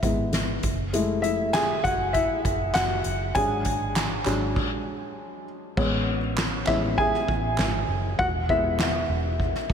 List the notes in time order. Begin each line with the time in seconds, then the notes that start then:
Already playing: G#3 B3 E4 E5
0.02 G#1 G#3 B3 E4, kick, closed hi-hat
0.33 snare, closed hi-hat
0.63 F#1, kick, closed hi-hat
0.93 G#3 A3 E4, closed hi-hat
1.22 E4 E5, closed hi-hat
1.53 G#4 G#5, snare, clap, closed hi-hat
1.84 F#1 F#4 F#5, kick, closed hi-hat
2.13 E4 E5, kick, closed hi-hat
2.45 F#1, kick, closed hi-hat
2.74 F#1 F#4 F#5, snare, clap, closed hi-hat
3.04 F#1, closed hi-hat
3.35 G#1 F#3 G#3 D4 G#4 G#5, kick, closed hi-hat
3.65 kick, closed hi-hat
3.96 snare, clap, closed hi-hat
4.25 G#1 F#3 G#3 D4, clap, closed hi-hat
4.56 kick, crash
5.77 A1 G#3 B3 C#4, kick, crash
6.07 ride
6.38 snare, clap, ride
6.66 A1 G#3 B3 C#4 E4 E5, kick, clap, ride
6.98 G#4 G#5, kick, ride
7.14 snare
7.28 A1, kick, ride
7.58 G#1, snare, clap, ride
7.88 F#1, ride
8.19 E1 F#4 F#5, kick, ride
8.49 G#3 B3 E4 E5, kick
8.79 snare, clap, ride
9.09 E1, ride
9.40 kick, ride
9.55 snare
9.69 G#1, kick, ride